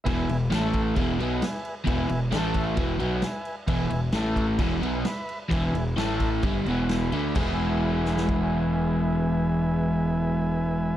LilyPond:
<<
  \new Staff \with { instrumentName = "Transistor combo organ" } { \time 4/4 \key e \major \tempo 4 = 131 << { r1 | r1 | r1 | r2 r8 fis''8 gis''16 b''8. |
r1 | r1 | } \\ { <b' e'' gis''>8 r8 <a' e'' a''>8 r8 <b' e'' gis''>8 <b' e'' gis''>8 <b' e'' gis''>8 r8 | <b' e'' gis''>8 r8 <a' e'' a''>8 r8 <b' e'' gis''>8 <b' e'' gis''>8 <b' e'' gis''>8 r8 | <b' e'' gis''>8 r8 <a' e'' a''>8 r8 <b' e'' gis''>8 <b' e'' gis''>8 <b' e'' b''>8 r8 | <b' e'' gis''>8 r8 <a' e'' a''>8 r8 <b' e'' gis''>8 <b' e'' gis''>8 <b' e''>8 r8 |
<b' e'' gis''>1~ | <b' e'' gis''>1 | } >> }
  \new Staff \with { instrumentName = "Overdriven electric guitar" } { \clef bass \time 4/4 \key e \major <e, b, e>8 <e, b,>8 <a, e a>4 <e, b, e>8 <b, fis b>8 r4 | <e, b, e>8 <e, b,>8 <a, e a>4 <e, b, e>8 <b, fis b>8 r4 | <e, b, e>8 <e, b,>8 <a, e a>4 <e, b, e>8 <b, fis b>8 r4 | <e, b, e>8 <e, b,>8 <a, e a>4 <g, d g>8 <e, b, e>4 <d a d'>8 |
<e gis b e' gis'>1~ | <e gis b e' gis'>1 | }
  \new Staff \with { instrumentName = "Fingered electric bass" } { \clef bass \time 4/4 \key e \major e,,8 e,,8 a,,4 e,,8 b,,8 r4 | e,,8 e,,8 a,,4 e,,8 b,,8 r4 | e,,8 e,,8 a,,4 e,,8 b,,8 r4 | e,,8 e,,8 a,,4 g,,8 e,,4 d,8 |
e,,1~ | e,,1 | }
  \new DrumStaff \with { instrumentName = "Drums" } \drummode { \time 4/4 <cymc bd>8 cymc8 <cymc sn>8 <cymc bd>8 <cymc bd>8 cymc8 <cymc sn>8 cymc8 | <cymc bd>8 cymc8 <cymc sn>8 <cymc bd>8 <cymc bd>8 cymc8 <cymc sn>8 cymc8 | <cymc bd>8 cymc8 <cymc sn>8 <cymc bd>8 <cymc bd>8 cymc8 <cymc sn>8 cymc8 | <cymc bd>8 cymc8 <cymc sn>8 <cymc bd>8 <cymc bd>8 cymc8 <cymc sn>8 cymc8 |
<cymc bd>4 r8 sn16 sn16 bd4 r4 | r4 r4 r4 r4 | }
>>